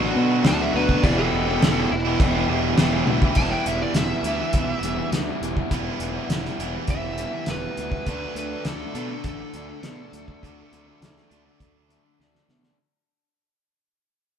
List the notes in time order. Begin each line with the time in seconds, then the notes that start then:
Already playing: A1 B2 F#3 B3 D4 F#4 B4
0.00 F#3 B3 D4 F#4
0.14 B2 D3 F#3 B3 D4 F#4
0.44 D2 D3 F#3 B3 D4 F#4 A5, snare, crash
0.58 F#3 B3 D4 F#4
0.62 E5
0.73 D2 D3 F#3 B3 D4 F#4 B4
0.88 F#3 B3 D4 F#4, kick
1.02 E1 E2 B2 E3 G3 B3 E4 G4 B4 D5, kick, crash
1.07 G4
1.18 A4
1.33 E1 E3 B3 E4 G4
1.46 G3 B3 E4 G4
1.50 B3 E4
1.61 E1 E3 G3 B3 E4, snare, crash
1.65 G4
1.77 G3 B3 E4
1.91 E1 E4, muted overdriven electric guitar stroke
2.07 G3 B3 E4 G4
2.20 E1, kick, crash
2.35 G3 B3 E4 G4
2.48 E1 E3 G3 B3 E4 G4
2.77 E1 E3 G3 B3 E4 G4, snare, crash
2.94 G3 B3 E4 G4
3.06 D2 E3 G3 B3, high tom
3.10 E4 G4
3.22 G3 E4 G4, kick
3.26 B3
3.35 E1 E3 G3 B3 A5, kick, crash
3.40 E4
3.52 G5
3.66 E1 E5, closed hi-hat
3.82 G3 B3 E4 D5
3.94 E1 E3 G3 B3 E5, snare, closed hi-hat
3.98 E4
4.23 D2 E3 G3 B3, closed hi-hat
4.28 E4
4.41 muted overdriven electric guitar stroke
4.53 B1, kick, closed hi-hat
4.81 E1 E3, closed hi-hat
4.85 G3 B3 E4
4.98 muted overdriven electric guitar stroke
5.12 D2 E3 G3 B3, snare, closed hi-hat
5.16 E4
5.42 E1 E3 G3 B3 E4, closed hi-hat
5.57 G3 B3 E4, kick
5.71 E1 E3 G3 B3 E4, kick, closed hi-hat
6.00 E1, closed hi-hat
6.16 G3 B3 E4
6.29 E1 E3 G3, snare, closed hi-hat
6.34 B3 E4
6.45 snare
6.59 E1 E3 G3 B3 E4, closed hi-hat
6.64 E4
6.75 muted overdriven electric guitar stroke
6.88 E1 E5, kick, closed hi-hat
7.18 E3 G3 B3 E4, closed hi-hat
7.34 muted overdriven electric guitar stroke
7.46 E1 E3 G3 B3 B4, snare, closed hi-hat
7.51 E4
7.77 D2 E3 G3 B3 E4, closed hi-hat
7.92 B3 E4, kick
7.96 G3
8.06 D2 D3 F#3 A3 D4, kick, closed hi-hat
8.35 D2 B4, closed hi-hat
8.51 F#3 A3 D4
8.65 D2 D3 F#3 A3 D4 A4, snare, closed hi-hat
8.94 B2 D3 F#3 A3 D4, closed hi-hat
8.98 D4
9.10 muted overdriven electric guitar stroke
9.24 A1, kick, closed hi-hat
9.28 A4
9.54 D2 D3 F#3 A3 D4, closed hi-hat
9.69 muted overdriven electric guitar stroke
9.82 B2 D3 F#3 A3 D4, snare, closed hi-hat
10.12 D2 D3 F#3 A3 D4, closed hi-hat
10.27 F#3 A3 D4, kick
10.43 D2 D3 F#3 A3 D4, kick, closed hi-hat
10.72 D2, closed hi-hat
10.87 F#3 A3 D4
11.01 D2 D3 F#3 A3 D4, snare, closed hi-hat
11.17 snare
11.30 D2 D3 F#3 A3 D4, closed hi-hat
11.45 muted overdriven electric guitar stroke
11.60 D2, kick, closed hi-hat
11.89 D3 F#3 A3 D4, closed hi-hat
12.05 muted overdriven electric guitar stroke
12.20 D2 D3 F#3 A3 D4, snare
12.35 snare
12.49 B2 D3 F#3 A3 D4, snare
12.63 F#3 A3 D4, snare